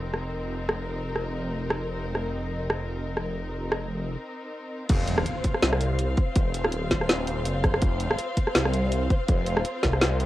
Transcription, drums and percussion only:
0.14 cross-stick soft
0.69 cross-stick medium
1.16 cross-stick soft
1.70 cross-stick medium
2.15 cross-stick medium
2.70 cross-stick medium
3.17 cross-stick soft
3.72 cross-stick medium
4.89 kick loud
4.89 closed hi-hat medium
4.89 crash loud
5.08 closed hi-hat medium
5.18 cross-stick medium
5.26 closed hi-hat medium
5.44 kick medium
5.44 closed hi-hat medium
5.55 cross-stick medium
5.63 snare loud
5.63 closed hi-hat medium
5.73 cross-stick medium
5.81 closed hi-hat medium
5.99 closed hi-hat medium
6.17 kick loud
6.17 closed hi-hat soft
6.36 kick loud
6.36 closed hi-hat medium
6.54 closed hi-hat medium
6.65 cross-stick medium
6.72 closed hi-hat medium
6.91 kick medium
6.91 snare medium
6.91 closed hi-hat medium
7.01 cross-stick medium
7.09 snare loud
7.09 closed hi-hat medium
7.27 closed hi-hat medium
7.45 closed hi-hat medium
7.64 kick loud
7.64 cross-stick medium
7.64 closed hi-hat soft
7.74 cross-stick medium
7.82 kick loud
7.82 closed hi-hat medium
8.00 closed hi-hat medium
8.11 cross-stick medium
8.19 closed hi-hat medium
8.37 kick medium
8.37 closed hi-hat medium
8.47 cross-stick medium
8.55 snare loud
8.55 closed hi-hat medium
8.65 cross-stick medium
8.74 closed hi-hat medium
8.92 closed hi-hat medium
9.10 kick loud
9.10 closed hi-hat soft
9.29 kick loud
9.29 closed hi-hat medium
9.47 closed hi-hat medium
9.57 cross-stick medium
9.65 closed hi-hat medium
9.83 kick medium
9.83 snare medium
9.83 closed hi-hat medium
9.93 cross-stick medium
10.01 snare loud
10.01 closed hi-hat medium
10.20 closed hi-hat medium

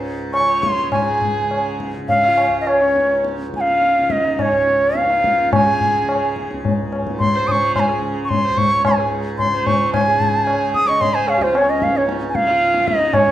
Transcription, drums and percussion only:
0.34 tabla na medium
0.63 tabla ke medium
0.92 tabla na medium
0.92 tabla ge medium
1.21 tabla ge medium
1.51 tabla na medium
1.80 tabla ke medium
1.94 tabla te medium
2.09 tabla tin medium
2.09 tabla ge medium
2.38 tabla na medium
2.67 tabla na medium
2.96 tabla te medium
3.24 tabla te medium
3.39 tabla te medium
3.54 tabla ke medium
3.67 tabla te medium
3.82 tabla te medium
3.96 tabla te medium
4.10 tabla ke medium
4.24 tabla te medium
4.39 tabla na medium
4.39 tabla ge medium
4.67 tabla te medium
4.95 tabla te medium
5.10 tabla te medium
5.24 tabla ke medium
5.38 tabla te medium
5.53 tabla na loud
5.53 tabla ge medium
5.81 tabla ge medium
6.09 tabla na medium
6.36 tabla ke medium
6.51 tabla te medium
6.65 tabla tin medium
6.65 tabla ge medium
6.93 tabla na medium
7.07 tabla ke medium
7.20 tabla tin medium
7.20 tabla ge medium
7.48 tabla tin medium
7.48 tabla ge medium
7.76 tabla na medium
7.76 tabla ge medium
8.31 tabla tin medium
8.31 tabla ge medium
8.57 tabla tin medium
8.57 tabla ge medium
8.85 tabla na loud
8.85 tabla ge medium
9.39 tabla tin medium
9.39 tabla ge medium
9.67 tabla tin medium
9.67 tabla ge medium
9.94 tabla na loud
9.94 tabla ge loud
10.20 tabla ge medium
10.47 tabla na medium
10.74 tabla ke medium
10.88 tabla te medium
11.01 tabla tin medium
11.01 tabla ge medium
11.28 tabla na medium
11.41 tabla ke medium
11.55 tabla na medium
11.82 tabla ke medium
11.95 tabla te medium
12.09 tabla te medium
12.22 tabla te medium
12.35 tabla ke medium
12.48 tabla te medium
12.61 tabla te medium
12.74 tabla te medium
12.88 tabla ke medium
13.00 tabla te medium
13.14 tabla na medium
13.14 tabla ge medium

